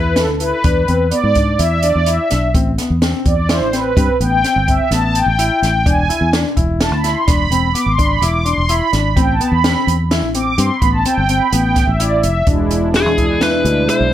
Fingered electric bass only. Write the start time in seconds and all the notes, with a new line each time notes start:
Already playing: E2
0.29 D2
0.64 E2
0.89 E2
1.24 G#2
1.59 E2
1.96 E2
2.32 B1
2.54 A1
2.90 E2
3.26 E2
3.62 A1
3.97 G2
4.20 A1
4.56 G1
4.91 A1
5.26 A1
5.62 A1
5.86 E1
6.21 E2
6.57 E1
6.92 D2
7.28 E1
7.51 E1
7.86 G#1
8.22 E1
8.58 E1
8.93 G#1
9.17 A1
9.52 E2
9.87 E2
10.22 A1
10.58 G2
10.82 A1
11.17 G1
11.53 A1
11.87 A1
12.24 F1
12.47 E1
13.06 E2
13.65 D2
14.00 B1